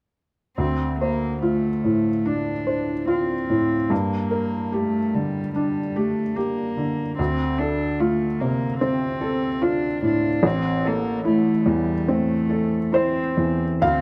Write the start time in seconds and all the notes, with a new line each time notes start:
0.57 D2 C4
1.00 A#3 C5
1.42 A3 F4
1.84 A2
2.26 D4
2.67 C5
3.07 C4 F4
3.50 A2
3.90 G2 A#3
4.31 A#4
4.72 A3 G4
5.14 D3 G3
5.55 G3 D4
5.96 A3 G4
6.36 A#3 G4
6.77 D3
7.18 D2 C4
7.59 D4 A4
8.00 A3 F4
8.40 C3 A#3
8.81 C4
9.21 A4
9.62 D4 F4
10.02 A2 D4
10.43 A1 C4
10.85 A#3 A4
11.25 A3 E4
11.66 E2 G3
12.08 A3 C4
12.50 A4
12.92 C4 E4 C5
13.37 E2
13.82 D2 C4 F5